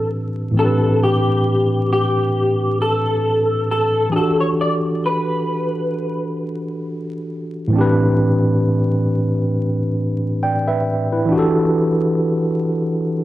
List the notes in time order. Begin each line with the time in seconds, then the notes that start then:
Already playing: A2 E3 C4 D4 G4 B4
0.51 A2 E3
0.57 C4 D4 A4
0.62 G4 B4
1.03 G4
1.93 G4
2.82 A4
3.71 A4
4.10 E3 D4 G#4
4.16 F#4 G4 A4
4.23 A4
4.40 C#5
4.61 D5
5.06 B4
7.68 A2 E3
7.73 C4 D4
7.78 G4 B4
10.43 D5 G5
10.68 B4 E5
11.12 E4 B4
11.26 E3 D4
11.32 F#4 G4
11.39 A4